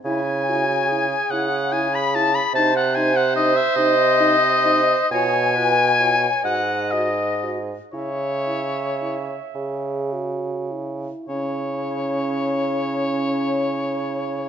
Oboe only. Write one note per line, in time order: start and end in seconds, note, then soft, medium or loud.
0.06 1.32 G#5 medium
1.31 1.74 F#5 medium
1.73 1.96 G#5 medium
1.95 2.17 B5 medium
2.15 2.37 A5 medium
2.35 2.54 B5 medium
2.55 2.75 A5 loud
2.77 2.97 F#5 medium
2.95 3.18 G#5 medium
3.16 3.35 F#5 medium
3.36 3.58 D#5 medium
3.57 3.78 E5 medium
3.76 5.11 D#5 loud
5.11 6.42 G#5 loud
6.45 6.93 F#5 medium
6.91 7.59 D#5 medium
7.92 9.51 C#5 medium
11.28 14.49 C#5 medium